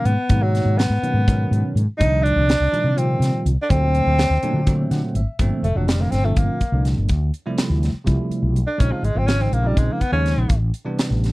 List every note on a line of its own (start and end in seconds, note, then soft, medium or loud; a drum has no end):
0.00 0.10 B2 medium
0.00 0.10 D#3 medium
0.00 0.10 F#3 medium
0.00 0.11 A#3 medium
0.00 0.10 C#4 medium
0.05 0.16 G#2 medium
0.05 0.44 B3 medium
0.05 closed hi-hat medium
0.29 0.61 G#2 loud
0.29 0.83 B2 medium
0.29 0.83 D#3 medium
0.29 0.83 F#3 medium
0.29 0.83 A#3 medium
0.29 0.84 D#4 medium
0.29 kick loud
0.29 closed hi-hat medium
0.43 0.79 F#3 medium
0.55 snare soft
0.55 closed hi-hat medium
0.65 0.87 G#2 medium
0.78 1.75 B3 medium
0.78 snare loud
0.78 closed hi-hat medium
0.90 1.01 G#2 medium
1.02 1.20 B2 medium
1.02 1.20 D#3 medium
1.02 1.21 F#3 medium
1.02 1.21 A#3 medium
1.02 1.21 C#4 medium
1.02 muted fretless electric bass stroke soft
1.02 closed hi-hat medium
1.14 1.45 G#2 medium
1.27 1.80 B2 medium
1.27 1.80 D#3 medium
1.27 1.80 F#3 medium
1.27 1.80 C#4 medium
1.27 1.80 A#4 medium
1.27 kick loud
1.27 closed hi-hat medium
1.51 1.62 G#2 loud
1.51 closed hi-hat medium
1.75 1.86 G#2 medium
1.75 closed hi-hat medium
1.97 2.31 C2 loud
1.97 2.52 A#2 medium
1.97 2.53 D#3 medium
1.97 2.53 F3 medium
1.97 2.53 G3 medium
1.97 2.53 D4 medium
1.97 2.24 D#4 loud
1.97 kick loud
1.97 closed hi-hat medium
2.23 3.00 D4 loud
2.23 closed hi-hat medium
2.36 2.57 C2 medium
2.49 snare loud
2.49 closed hi-hat medium
2.60 2.71 C2 medium
2.72 2.90 A#2 medium
2.72 2.90 D#3 medium
2.72 2.90 F3 medium
2.72 2.90 G3 medium
2.72 2.90 D#4 medium
2.72 muted fretless electric bass stroke soft
2.72 closed hi-hat medium
2.84 3.15 C3 medium
2.95 3.49 A#2 medium
2.95 3.49 D#3 medium
2.95 3.50 F3 medium
2.95 3.50 G3 medium
2.95 3.46 C4 medium
2.95 3.50 F4 medium
2.95 closed hi-hat medium
3.20 3.31 C3 medium
3.20 snare soft
3.20 closed hi-hat medium
3.46 3.56 C2 medium
3.46 closed hi-hat medium
3.62 3.71 D4 medium
3.69 4.01 D2 loud
3.69 4.23 A#2 medium
3.69 4.23 D3 medium
3.69 4.23 F#3 medium
3.69 4.23 A3 medium
3.69 4.91 C4 loud
3.69 4.23 C4 medium
3.69 kick loud
3.69 closed hi-hat medium
3.95 closed hi-hat medium
4.06 4.27 D2 medium
4.19 snare loud
4.19 closed hi-hat medium
4.30 4.40 D2 medium
4.43 4.60 A#2 medium
4.43 4.60 D3 medium
4.43 4.60 F#3 medium
4.43 4.61 A3 medium
4.43 4.61 D4 loud
4.43 closed hi-hat medium
4.54 4.85 D3 medium
4.67 5.20 A#2 medium
4.67 5.20 D3 medium
4.67 5.20 F#3 medium
4.67 5.20 A3 medium
4.67 5.20 C4 loud
4.67 kick loud
4.67 closed hi-hat medium
4.91 5.01 D3 medium
4.91 5.13 F#5 medium
4.91 snare soft
4.91 closed hi-hat medium
5.15 5.25 G#1 medium
5.15 5.38 E5 medium
5.15 closed hi-hat medium
5.39 5.49 G1 loud
5.39 5.66 A#2 medium
5.39 5.66 D3 medium
5.39 5.66 F3 medium
5.39 5.66 A3 medium
5.39 5.67 C4 loud
5.39 kick loud
5.39 closed hi-hat medium
5.63 5.73 F1 medium
5.63 5.78 A3 medium
5.63 closed hi-hat medium
5.75 6.07 F1 medium
5.75 5.93 A#2 medium
5.75 5.93 D3 medium
5.75 5.94 F3 medium
5.75 5.89 F#3 medium
5.75 5.94 A3 medium
5.75 5.94 D4 medium
5.88 6.02 G3 medium
5.88 snare loud
5.88 closed hi-hat medium
5.99 6.17 A#2 medium
5.99 6.17 D3 medium
5.99 6.17 F3 medium
5.99 6.17 A3 medium
5.99 6.12 A#3 medium
5.99 6.18 C4 medium
6.11 6.33 G1 medium
6.11 6.26 C4 medium
6.11 snare soft
6.11 closed hi-hat medium
6.23 6.59 A#2 medium
6.23 6.59 D3 medium
6.23 6.60 F3 medium
6.23 6.60 A3 medium
6.23 6.39 A3 medium
6.23 6.60 C4 medium
6.36 6.47 G1 medium
6.36 6.85 A#3 medium
6.36 kick loud
6.36 closed hi-hat medium
6.61 muted fretless electric bass stroke soft
6.61 kick medium
6.61 closed hi-hat medium
6.72 6.93 C2 medium
6.72 7.09 A#2 medium
6.72 7.09 D3 medium
6.72 7.10 F3 medium
6.72 7.10 A3 medium
6.72 7.10 D4 medium
6.85 snare soft
6.85 closed hi-hat medium
6.97 7.07 G1 medium
7.09 7.30 D2 medium
7.09 kick loud
7.09 closed hi-hat medium
7.34 closed hi-hat soft
7.46 7.90 C3 medium
7.46 7.90 F3 medium
7.46 7.90 G3 medium
7.46 7.91 A3 medium
7.46 7.91 E4 loud
7.58 snare loud
7.58 closed hi-hat medium
7.70 7.91 D2 medium
7.83 snare soft
7.83 closed hi-hat medium
8.05 8.17 C2 medium
8.05 8.59 C3 medium
8.05 8.60 F3 medium
8.05 8.60 G3 medium
8.05 8.60 A3 medium
8.05 8.60 E4 medium
8.05 kick loud
8.05 closed hi-hat medium
8.30 muted fretless electric bass stroke soft
8.30 closed hi-hat medium
8.43 8.64 B1 medium
8.56 closed hi-hat medium
8.67 8.81 D4 medium
8.78 8.90 A#1 loud
8.78 9.05 C#3 medium
8.78 9.05 F3 medium
8.78 9.05 G#3 medium
8.78 9.06 C4 medium
8.78 8.93 C#4 medium
8.78 9.06 D#4 medium
8.78 kick loud
8.78 closed hi-hat medium
8.92 9.06 F3 medium
9.03 9.14 G#1 medium
9.03 9.19 G#3 medium
9.03 closed hi-hat medium
9.15 9.47 G#1 medium
9.15 9.33 C#3 medium
9.15 9.33 F3 medium
9.15 9.34 G#3 medium
9.15 9.34 C4 medium
9.15 9.28 C4 medium
9.15 9.33 F4 medium
9.27 9.43 C#4 medium
9.27 snare loud
9.27 closed hi-hat medium
9.39 9.58 C#3 medium
9.39 9.57 F3 medium
9.39 9.57 G#3 medium
9.39 9.58 C4 medium
9.39 9.55 C4 medium
9.39 9.58 D#4 medium
9.52 9.73 A#1 medium
9.52 9.68 A#3 medium
9.52 closed hi-hat medium
9.63 9.99 C#3 medium
9.63 9.99 F3 medium
9.63 10.00 G#3 medium
9.63 10.00 C4 medium
9.63 10.00 D#4 medium
9.67 9.79 G3 medium
9.77 9.87 A#1 medium
9.77 9.94 G#3 medium
9.77 kick medium
9.77 closed hi-hat medium
9.92 10.02 A#3 medium
10.01 10.12 B3 medium
10.01 muted fretless electric bass stroke soft
10.01 kick medium
10.01 closed hi-hat medium
10.12 10.34 D#2 medium
10.12 10.49 C#3 medium
10.12 10.49 F3 medium
10.12 10.49 G#3 medium
10.12 10.58 C#4 medium
10.12 10.49 D#4 medium
10.12 10.50 C5 medium
10.26 snare soft
10.26 closed hi-hat medium
10.37 10.47 A#1 medium
10.49 10.71 A1 medium
10.49 kick loud
10.49 closed hi-hat medium
10.74 closed hi-hat medium
10.85 11.30 C3 medium
10.85 11.30 E3 medium
10.85 11.30 G3 medium
10.85 11.31 B3 medium
10.85 11.31 D4 medium
10.99 snare loud
10.99 closed hi-hat medium
11.10 11.31 A1 medium
11.24 snare soft
11.24 closed hi-hat medium